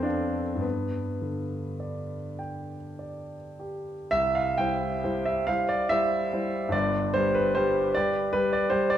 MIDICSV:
0, 0, Header, 1, 2, 480
1, 0, Start_track
1, 0, Key_signature, 0, "major"
1, 0, Tempo, 1167315
1, 261, Time_signature, 6, 3, 24, 8
1, 1705, Tempo, 875912
1, 2665, Tempo, 828729
1, 3625, Tempo, 771208
1, 4510, End_track
2, 0, Start_track
2, 0, Title_t, "Grand piano"
2, 0, Program_c, 0, 0
2, 0, Control_c, 0, 64, 127
2, 0, Note_on_c, 0, 41, 48
2, 0, Note_on_c, 0, 59, 68
2, 0, Note_on_c, 0, 60, 66
2, 0, Note_on_c, 0, 69, 40
2, 11, Note_on_c, 0, 62, 67
2, 16, Note_on_c, 0, 74, 36
2, 18, Note_on_c, 0, 77, 40
2, 166, Note_off_c, 0, 69, 0
2, 228, Note_on_c, 0, 43, 46
2, 240, Note_off_c, 0, 74, 0
2, 241, Note_off_c, 0, 77, 0
2, 246, Note_off_c, 0, 41, 0
2, 252, Note_off_c, 0, 59, 0
2, 252, Note_on_c, 0, 59, 67
2, 254, Note_off_c, 0, 62, 0
2, 270, Control_c, 0, 64, 0
2, 271, Note_off_c, 0, 60, 0
2, 354, Control_c, 0, 64, 127
2, 500, Note_on_c, 0, 50, 35
2, 740, Note_on_c, 0, 74, 39
2, 889, Note_off_c, 0, 50, 0
2, 982, Note_off_c, 0, 59, 0
2, 982, Note_on_c, 0, 79, 41
2, 1131, Note_off_c, 0, 74, 0
2, 1229, Note_on_c, 0, 74, 39
2, 1381, Note_off_c, 0, 79, 0
2, 1478, Note_on_c, 0, 67, 35
2, 1624, Note_off_c, 0, 74, 0
2, 1673, Note_off_c, 0, 43, 0
2, 1690, Note_on_c, 0, 76, 101
2, 1694, Note_on_c, 0, 36, 58
2, 1702, Note_off_c, 0, 67, 0
2, 1716, Control_c, 0, 64, 0
2, 1817, Note_on_c, 0, 77, 83
2, 1818, Control_c, 0, 64, 127
2, 1820, Note_off_c, 0, 76, 0
2, 1937, Note_off_c, 0, 36, 0
2, 1940, Note_on_c, 0, 79, 87
2, 1945, Note_off_c, 0, 77, 0
2, 1949, Note_on_c, 0, 55, 44
2, 1950, Note_on_c, 0, 64, 40
2, 1956, Note_on_c, 0, 72, 46
2, 2171, Note_off_c, 0, 55, 0
2, 2172, Note_off_c, 0, 64, 0
2, 2175, Note_off_c, 0, 72, 0
2, 2195, Note_on_c, 0, 55, 45
2, 2195, Note_on_c, 0, 64, 43
2, 2197, Note_on_c, 0, 72, 48
2, 2310, Note_off_c, 0, 79, 0
2, 2313, Note_on_c, 0, 76, 75
2, 2413, Note_off_c, 0, 55, 0
2, 2413, Note_off_c, 0, 64, 0
2, 2414, Note_off_c, 0, 72, 0
2, 2429, Note_on_c, 0, 77, 96
2, 2433, Note_off_c, 0, 76, 0
2, 2436, Note_on_c, 0, 55, 44
2, 2438, Note_on_c, 0, 64, 47
2, 2438, Note_on_c, 0, 72, 52
2, 2443, Control_c, 0, 64, 0
2, 2530, Control_c, 0, 64, 127
2, 2549, Note_off_c, 0, 77, 0
2, 2549, Note_on_c, 0, 74, 83
2, 2644, Note_off_c, 0, 55, 0
2, 2645, Note_off_c, 0, 64, 0
2, 2646, Note_off_c, 0, 72, 0
2, 2662, Note_on_c, 0, 76, 102
2, 2664, Note_off_c, 0, 74, 0
2, 2672, Note_on_c, 0, 64, 48
2, 2673, Note_on_c, 0, 55, 49
2, 2676, Note_on_c, 0, 72, 50
2, 2884, Note_off_c, 0, 64, 0
2, 2885, Note_off_c, 0, 55, 0
2, 2886, Note_off_c, 0, 72, 0
2, 2916, Note_on_c, 0, 55, 48
2, 2918, Note_on_c, 0, 64, 46
2, 2920, Note_on_c, 0, 72, 50
2, 3122, Note_on_c, 0, 43, 66
2, 3129, Note_off_c, 0, 55, 0
2, 3130, Note_off_c, 0, 64, 0
2, 3131, Note_off_c, 0, 72, 0
2, 3142, Note_on_c, 0, 74, 95
2, 3144, Note_off_c, 0, 76, 0
2, 3145, Note_on_c, 0, 31, 64
2, 3157, Control_c, 0, 64, 0
2, 3250, Control_c, 0, 64, 127
2, 3370, Note_off_c, 0, 43, 0
2, 3382, Note_off_c, 0, 31, 0
2, 3382, Note_on_c, 0, 72, 95
2, 3388, Note_off_c, 0, 74, 0
2, 3392, Note_on_c, 0, 55, 49
2, 3392, Note_on_c, 0, 67, 52
2, 3395, Note_on_c, 0, 71, 53
2, 3495, Note_off_c, 0, 71, 0
2, 3504, Note_on_c, 0, 71, 82
2, 3506, Note_off_c, 0, 72, 0
2, 3603, Note_off_c, 0, 55, 0
2, 3603, Note_off_c, 0, 67, 0
2, 3620, Note_on_c, 0, 72, 98
2, 3622, Note_off_c, 0, 71, 0
2, 3632, Note_on_c, 0, 55, 52
2, 3637, Note_on_c, 0, 67, 53
2, 3638, Note_on_c, 0, 71, 57
2, 3847, Note_off_c, 0, 55, 0
2, 3849, Note_off_c, 0, 67, 0
2, 3850, Note_off_c, 0, 71, 0
2, 3865, Note_off_c, 0, 72, 0
2, 3868, Note_on_c, 0, 74, 98
2, 3878, Control_c, 0, 64, 0
2, 3878, Note_on_c, 0, 67, 52
2, 3879, Note_on_c, 0, 55, 54
2, 3881, Note_on_c, 0, 71, 56
2, 3963, Control_c, 0, 64, 127
2, 4089, Note_off_c, 0, 55, 0
2, 4089, Note_off_c, 0, 67, 0
2, 4090, Note_off_c, 0, 71, 0
2, 4105, Note_on_c, 0, 71, 97
2, 4107, Note_off_c, 0, 74, 0
2, 4113, Note_on_c, 0, 55, 56
2, 4118, Note_on_c, 0, 67, 51
2, 4226, Note_off_c, 0, 71, 0
2, 4230, Note_on_c, 0, 74, 90
2, 4326, Note_off_c, 0, 55, 0
2, 4328, Note_off_c, 0, 67, 0
2, 4336, Note_on_c, 0, 72, 90
2, 4345, Note_on_c, 0, 55, 54
2, 4348, Note_off_c, 0, 74, 0
2, 4350, Note_on_c, 0, 67, 53
2, 4352, Note_on_c, 0, 71, 53
2, 4460, Note_off_c, 0, 72, 0
2, 4461, Note_on_c, 0, 74, 98
2, 4510, Note_off_c, 0, 55, 0
2, 4510, Note_off_c, 0, 67, 0
2, 4510, Note_off_c, 0, 71, 0
2, 4510, Note_off_c, 0, 74, 0
2, 4510, End_track
0, 0, End_of_file